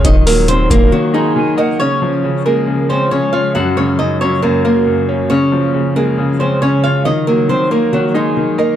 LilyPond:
<<
  \new Staff \with { instrumentName = "Flute" } { \time 4/4 \key des \major \tempo 4 = 137 r2 r8 bes''8 aes''8 ges''8 | r1 | r1 | r1 |
r1 | }
  \new Staff \with { instrumentName = "Nylon-string guitar" } { \time 4/4 \key des \major <ees' ees''>8 <bes bes'>8 <c' c''>8 <bes bes'>8 <ges ges'>8 <aes aes'>4 <bes bes'>8 | <des' des''>4. <bes bes'>4 <c' c''>8 <des' des''>8 <f' f''>8 | <ges' ges''>8 <des' des''>8 <ees' ees''>8 <des' des''>8 <bes bes'>8 <bes bes'>4. | <des' des''>4. <bes bes'>4 <c' c''>8 <des' des''>8 <f' f''>8 |
<ees' ees''>8 <bes bes'>8 <c' c''>8 <bes bes'>8 <ges ges'>8 <aes aes'>4 <bes bes'>8 | }
  \new Staff \with { instrumentName = "Ambient pad" } { \clef bass \time 4/4 \key des \major << { <ges bes ges'>1 | <f aes f'>1 | <ges bes ges'>1 | <f aes f'>1 |
<ges bes ges'>1 | } \\ { ees1 | des1 | des1~ | des1 |
ees1 | } >> }
  \new Staff \with { instrumentName = "Grand piano" } { \clef bass \time 4/4 \key des \major ees8 ges8 ees8 bes8 ees8 ees'8 ees8 ees''8 | des8 f8 des8 aes8 des8 des'8 des8 des''8 | ges,8 des8 ges,8 ges8 ges,8 bes8 ges,8 des'8 | des8 f8 des8 aes8 des8 des'8 des8 des''8 |
ees8 ges8 ees8 bes8 ees8 ees'8 ees8 ees''8 | }
  \new Staff \with { instrumentName = "808-style bass" } { \clef bass \time 4/4 \key des \major ees,,4. ees,,8 r2 | r1 | r1 | r1 |
r1 | }
  \new DrumStaff \with { instrumentName = "Drums" } \drummode { \time 4/4 <hh bd>8 hho8 hh8 <hh bd>8 r4 r4 | r4 r4 r4 r4 | r4 r4 r4 r4 | r4 r4 r4 r4 |
r4 r4 r4 r4 | }
>>